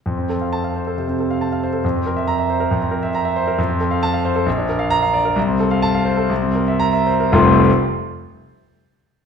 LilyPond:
\new Staff \with { instrumentName = "Grand piano" } { \time 4/4 \key f \major \tempo 4 = 133 << { r4 a''8 r2 r8 | r4 bes''8 r2 r8 | r4 a''8 r4. bes''8 r8 | r4 a''8 r4. bes''8 r8 |
<f,, c, f a c' f'>8 r2. r8 | } \\ { f,16 c'16 a'16 f''8 f''16 c''16 a'16 c16 c'16 a'16 f''16 a''16 f''16 c''16 a'16 | f,16 c'16 bes'16 e''8 e''16 c''16 bes'16 f,16 c'16 bes'16 e''16 bes''16 e''16 c''16 bes'16 | f,16 c'16 a'16 f''8 f''16 c''16 a'16 bes,,16 d'16 bes'16 f''8 f''16 d''16 bes'16 | c,16 c'16 a'16 f''8 f''16 c''16 a'16 c,16 c'16 bes'16 e''8 e''16 c''16 bes'16 |
r1 | } >> }